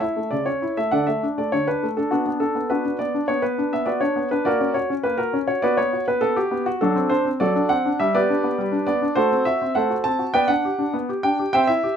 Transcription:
grand piano
0.00 E4 E5
0.16 A3
0.31 C#3 D5
0.46 C#4 C#5
0.62 E4
0.77 A3 E5
0.91 D3 A4 D5 F#5
1.07 A3 E5
1.23 D4
1.38 A3 D5
1.52 D3 C#5
1.67 D4 B4
1.83 A3
1.97 D4 A4
2.11 B3 D4 F#4
2.26 B3
2.40 D4 A4
2.55 B3
2.70 B3 D4 F#4 B4
2.85 D4
2.99 B3 D5
3.14 D4
3.28 B3 C#5
3.42 B3 B4
3.58 D4
3.73 B3 E5
3.86 B3 F#4 B4 D5
4.01 D4 C#5
4.16 B3
4.31 D4 B4
4.45 A#3 F#4 A#4 D5
4.61 C#4
4.74 F#4 C#5
4.90 C#4
5.03 A#3 B4
5.18 F#4 A#4
5.33 C#4
5.48 F#4 C#5
5.62 B3 F#4 B4 D5
5.77 B3 C#5
5.93 F#4
6.08 B3 B4
6.21 B3 A4
6.36 F#4 G4
6.51 B3
6.66 F#4
6.81 F#3 D4 F#4 A4
6.96 C4
7.10 D4 C5
7.25 C4
7.40 F#3 F#4 A4 D5
7.55 D4
7.69 C4 F#5
7.85 D4
8.00 G3 E5
8.15 B3 G4 B4 D5
8.30 D4
8.44 B3
8.58 G3
8.72 D4
8.87 B3 D5
9.02 D4
9.15 A3 F#4 A4 C5
9.32 C4
9.45 F#4 E5
9.62 C4
9.75 A3 A4 C5 F#5
9.90 F#4
10.04 C4 A5
10.19 F#4
10.34 B3 B4 D5 G5
10.48 D4 F#5
10.65 G4
10.78 D4
10.94 B3
11.09 G4
11.23 D4 G5
11.39 G4
11.53 C4 C5 E5 G5
11.67 E4 E5
11.84 G4

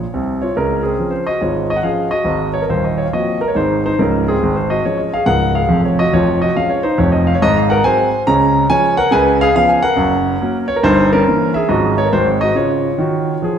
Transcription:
grand piano
Already playing: G#4 C#5
0.14 C2 C3
0.42 F4 C#5
0.56 C#2 C#3 C#4 A#4
0.83 C4 G#4
0.99 F3 C#4
1.11 C5
1.27 F#4 D#5
1.41 G#1 G#2 F4 C#5
1.70 D#5
1.77 F#5
1.83 F3 C#4 G#4 F5
2.11 F#4 D#5
2.25 G#1 G#2
2.54 C#5
2.62 A#4
2.69 D#1 D#2 C5
2.84 D#5
2.98 C#5
3.06 F5
3.13 F3 A#3 C4 F#4 D#5
3.41 A#4
3.48 C#5
3.55 G#1 G#2 D#4 C5
3.86 D#4 C5
3.99 C#1 C#2 C#4 A#4
4.28 C4 G#4
4.43 G#1
4.56 C5
4.70 F#4 D#5
4.85 F3 G#3 C#4 C#5
4.98 D#5
5.14 G#4 F5
5.26 C#1 C#2 A#4 F#5
5.55 G#4 F5
5.69 F1 F2
5.85 C#5
5.99 F#4 D#5
6.13 F1 F2 F4 C#5
6.42 F#4 D#5
6.56 F3 G#3 C#4 F5
6.70 C#5
6.83 D#4 C5
6.98 F1 F2 C#5
7.12 D#5
7.27 F5
7.35 C#5
7.42 G#1 G#2 D#5
7.56 F5
7.70 A#4 F#5
7.84 F#3 G#3 C4 C5 G#5
8.27 C#2 C#3 C#5 A#5
8.70 F3 G#3 C#4 C#5 G#5
8.97 A#4 F#5
9.11 C#2 C#3 B4 G#5
9.41 G#4 F5
9.56 F3 B3 C#4 F5
9.69 G#5
9.82 A#4 F#5
9.96 F#1 F#2
10.41 F#3 A#3 C#4
10.68 C#5
10.76 A#4
10.83 G1 G2 D#4 C5
11.13 C#4 A#4
11.28 E3 A#3 C#4
11.54 G#4 E5
11.68 G#1 G#2 F3 G#3 C#4 F#4 D#5
11.98 C#5
12.05 A#4
12.13 G#1 G#2 F#3 G#3 C4 C5
12.26 C#5
12.41 F#4 D#5
12.55 C#3 F4 C#5
12.98 D#3 F#4
13.42 F3 G#4

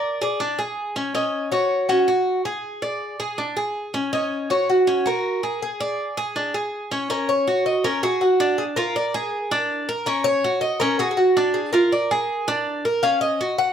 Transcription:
cuban tres
Already playing: A#4 D5
0.21 G#4 D5
0.40 D4
0.59 G#4
0.96 C#4
1.15 C#4 D#5
1.52 F#4 C#5
1.89 C#4 F#4
2.08 F#4
2.45 G#4
2.82 D5
3.20 G#4
3.38 D4
3.57 G#4
3.94 C#4
4.13 C#4 D#5
4.50 F#4 C#5
4.70 F#4
4.87 C#4
5.06 F#4 A#4
5.43 G#4
5.62 G#4
5.80 D5
6.17 G#4
6.36 D4
6.54 G#4
6.92 C#4
7.10 C#4 A#4
7.29 C#5
7.47 F#4
7.66 D#5
7.84 C#4 A#4
8.03 F#4 G#4
8.21 F#4
8.40 D4
8.58 G#4
8.76 F4 A#4
8.96 D5
9.14 G#4
9.51 D4
9.89 A#4
10.06 C#4 A#4
10.24 C#5
10.44 F#4
10.61 D#5
10.80 C#4 A#4
10.99 F#4 G#4
11.11 G#4
11.17 F#4
11.37 D4
11.54 G#4
11.73 F4 A#4
11.92 D5
12.11 G#4
12.48 D4
12.85 A#4
13.03 C#4 F5
13.21 D#5
13.41 F#4
13.58 F#5

